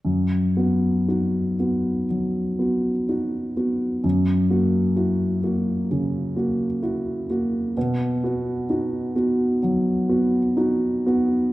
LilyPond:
\new Staff \with { instrumentName = "Grand piano" } { \time 4/4 \key b \major \tempo 4 = 64 fis,8 <b fis'>8 <dis' fis'>8 <b fis'>8 fis8 <b fis'>8 <dis' fis'>8 <b fis'>8 | fis,8 <ais fis'>8 <e' fis'>8 <ais fis'>8 cis8 <ais fis'>8 <e' fis'>8 <ais fis'>8 | b,8 <b fis'>8 <dis' fis'>8 <b fis'>8 fis8 <b fis'>8 <dis' fis'>8 <b fis'>8 | }